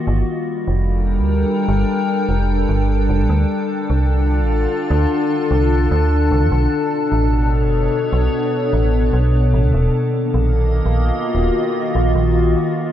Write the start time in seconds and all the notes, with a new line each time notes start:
Already playing: A#3 F4
0.07 G1 G3
0.28 D4
0.33 A4
0.57 A#4
0.61 G5
0.68 F1
1.19 D2
1.68 G1
2.29 F1
2.69 G1
3.09 F1
3.21 A#1
3.29 D2 D3
3.73 A5
3.86 C2 F4
4.41 A1
4.90 D2
5.51 C2
5.91 D2
6.31 C2
6.43 F2
6.52 B1 B2
6.67 B3
7.07 C#5
7.12 A1
7.64 F#1
8.13 B1
8.73 A1
9.13 B1
9.54 A1
9.65 D2
9.74 D#1 D#3
9.81 A#3
10.18 D#5
10.27 F4
10.34 A#1
10.56 F#4
10.86 A#1
11.35 D#1
11.95 A#1
12.15 A#1